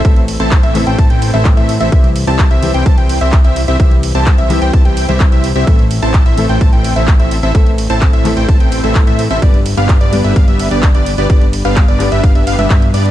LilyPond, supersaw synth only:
\new Staff \with { instrumentName = "Supersaw synth" } { \time 4/4 \key a \minor \tempo 4 = 128 r8. <c' e' a' c'' a''>8 <c' e' a' c'' e''>8 <c' e' a' c'' g''>16 <c' e' a' c'' a''>16 <c' e' a' c'' g''>8 <c' e' a' c'' e''>16 r16 <c' e' a' c'' e''>16 r16 <c' e' a' c'' e''>16 | <c' e' g' c'' e''>16 r8 <c' e' g' c'' a''>8 <c' e' g' c'' e''>8 <c' e' g' c'' g''>16 <c' c'' a''>16 <c' e' g' c'' g''>8 <c' e' g' c'' e''>16 r16 <c' e' g' c'' e''>16 r16 <c' e' g' c'' e''>16 | r8. <c' e' g' c'' a''>8 <c' e' g' c'' e''>8 <c' e' g' c'' g''>16 <c' e' g' c'' a''>16 <c' e' g' c'' g''>8 <c' e' g' c'' e''>16 r16 <c' e' g' c'' e''>16 r16 <c' e' g' c'' e''>16 | <c' e' a' e''>16 r8 <c' e' a' c'' a''>8 <c' e' a' c'' e''>8 <c' e' a' c'' g''>16 <c' e' a' c'' a''>16 <c' e' a' c'' g''>8 <c' e' a' c'' e''>16 r16 <c' e' a' c'' e''>16 r16 <c' e' a' c'' e''>16 |
<c' e' a' c'' e''>16 r8 <c' e' a' c'' a''>8 <c' e' a' c'' e''>8 <c' e' a' c'' g''>16 <c' a' c'' a''>16 <c' e' a' c'' g''>8 <c' e' a' c'' e''>16 r16 <c' e' a' c'' e''>16 r16 <c' e' a' c'' e''>16 | <b d' g' d''>16 r8 <b d' g' b' f''>8 <b d' g' b' d''>8 <b d' g' b' e''>16 <b b'>16 <b d' g' b' e''>8 <b d' g' b' d''>16 r16 <b d' g' b' d''>16 r16 <b d' g' b' d''>16 | <d' g' d''>16 r8 <b d' g' b' f''>8 <b d' g' b' d''>8 <b d' g' b' e''>16 <b d' g' b' f''>16 <b d' g' b' e''>16 <b d' g' b' f''>16 <b d' g' b' e''>16 b16 r16 <b d' g' b' d''>8 | }